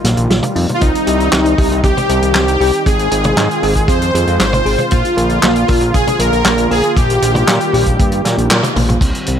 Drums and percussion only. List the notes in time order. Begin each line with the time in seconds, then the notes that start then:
0.05 snare, closed hi-hat
0.17 closed hi-hat
0.30 snare, closed hi-hat
0.43 closed hi-hat, mid tom
0.56 open hi-hat
0.69 closed hi-hat, mid tom
0.81 kick, closed hi-hat
0.95 closed hi-hat
1.07 closed hi-hat
1.20 closed hi-hat
1.33 snare, clap, closed hi-hat
1.46 closed hi-hat
1.58 kick, open hi-hat
1.72 closed hi-hat
1.84 kick, closed hi-hat
1.97 closed hi-hat, mid tom
2.09 closed hi-hat
2.22 closed hi-hat
2.35 snare, clap, closed hi-hat
2.48 closed hi-hat
2.61 open hi-hat
2.73 closed hi-hat
2.86 kick, closed hi-hat
2.99 closed hi-hat
3.12 closed hi-hat
3.24 closed hi-hat, mid tom
3.37 snare, clap, closed hi-hat
3.51 closed hi-hat
3.63 open hi-hat
3.76 kick, closed hi-hat
3.88 kick, closed hi-hat
4.02 closed hi-hat
4.15 closed hi-hat
4.27 closed hi-hat
4.40 snare, clap, closed hi-hat
4.53 closed hi-hat, mid tom
4.66 open hi-hat
4.78 closed hi-hat, mid tom
4.91 kick, closed hi-hat
5.05 closed hi-hat
5.18 closed hi-hat
5.29 closed hi-hat
5.42 snare, clap, closed hi-hat
5.56 closed hi-hat
5.68 kick, open hi-hat
5.81 closed hi-hat
5.94 kick, closed hi-hat
6.07 closed hi-hat, mid tom
6.20 closed hi-hat
6.33 closed hi-hat
6.45 snare, clap, closed hi-hat
6.58 closed hi-hat
6.71 open hi-hat
6.84 closed hi-hat
6.97 kick, closed hi-hat
7.10 closed hi-hat
7.22 closed hi-hat
7.35 closed hi-hat, mid tom
7.48 snare, clap, closed hi-hat
7.61 closed hi-hat
7.74 open hi-hat
7.86 kick, closed hi-hat
8.00 kick, closed hi-hat
8.12 closed hi-hat
8.25 snare, closed hi-hat
8.38 closed hi-hat
8.50 snare, clap, closed hi-hat, high tom
8.63 closed hi-hat, mid tom, high tom
8.76 open hi-hat, mid tom
8.89 closed hi-hat, mid tom
9.01 kick, closed hi-hat, crash
9.15 closed hi-hat
9.27 closed hi-hat